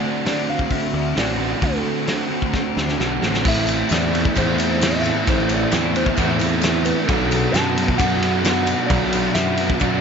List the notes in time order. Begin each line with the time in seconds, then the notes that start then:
Already playing: D3 A3 C4 F#4
0.01 A3 D4 D5
0.25 D3 A3 C4 D4 F#4 D5, snare, open hi-hat
0.47 A3 D4 F5
0.59 kick
0.71 E5, kick, open hi-hat
0.94 D2
1.15 A1 D3 A3 C4 D4 F#4 D5, snare, open hi-hat
1.37 C4 D4 F#4
1.41 A3
1.61 D2 D3 A3 C4 D4 F#4 A4, kick, open hi-hat
1.83 A3 D4
2.07 D3 A3 C4 D4 F#4, snare, open hi-hat
2.29 A3 D4
2.42 kick
2.54 kick, snare
2.77 D2, snare
2.88 snare
2.99 B1 D3 A3 C4 D4 F#4, snare
3.20 A1 C4 D4 F#4, snare
3.25 A3
3.34 snare
3.44 A1 A2 E3 A3 C4 E4, kick, crash, tambourine
3.48 E5
3.65 E3 A3, ride, tambourine
3.89 E2 A2 E3 A3 C4 E4, snare, ride, tambourine
3.93 D5
4.12 E3 A3, ride, tambourine
4.25 kick
4.35 E2 A2 E3 A3 C4 E4 C5, kick, ride, tambourine
4.58 E3 A3 C4 E4, ride, tambourine
4.80 A2 E3 A3 C4 E4, snare, ride, tambourine
4.84 E5
5.02 E3 A3, ride, tambourine
5.25 A1 A2 E3 A3 C4 E4, kick, ride, tambourine
5.29 C5
5.49 E3 A3, ride, tambourine
5.53 D5
5.70 E2 A2 E3 A3 C4 E4, snare, ride, tambourine
5.93 E3 A3 C5, ride, tambourine
6.06 kick
6.17 E2 A2 E3 A3 C4 E4, kick, ride, tambourine
6.39 E3 A3 C4 E4, ride, tambourine
6.61 A2 E3 A3 C4 E4, snare, ride, tambourine
6.83 E3 A3 B4, ride, tambourine
7.07 B1 B2 F#3 B3 D4 F#4 A4, kick, ride, tambourine
7.30 F#3 B3, ride, tambourine
7.52 F#2 B2 F#3 B3 D4 F#4 A5, ride, tambourine
7.56 snare
7.75 F#3 B3, ride, tambourine
7.88 kick
7.98 F#2 B2 F#3 B3 D4 F#4 F#5, kick, ride, tambourine
8.20 F#3 B3 D4 F#4, ride
8.41 B2 F#3 B3 D4 F#4 F#5, ride, tambourine
8.46 snare
8.66 F#3 B3, ride, tambourine
8.87 B1 B2 F#3 B3 D5, kick, ride
8.91 D4 F#4, tambourine
9.12 F#3 B3, ride, tambourine
9.34 F#2 B2 F#3 B3 D4 F#4 E5, snare, ride, tambourine
9.57 F#3 B3, ride
9.70 kick
9.80 F#2 B2 F#3 B3 D4 F#4 D5, kick, ride, tambourine